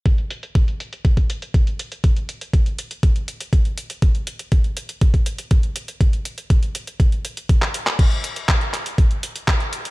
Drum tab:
CC |----------------|----------------|----------------|----------------|
HH |xxxxxxxxxxxxxxxx|xxxxxxxxxxxxxxxx|xxxxxxxxxxxxxxxx|xxxxxxxxxxxxxxxx|
CP |----------------|----------------|----------------|-------------x-x|
BD |o---o---oo--o---|o---o---o---o---|o---o---oo--o---|o---o---o---o---|

CC |x---------------|
HH |xxxxxxxxxxxxxxxx|
CP |----x-x-----x---|
BD |o---o---o---o---|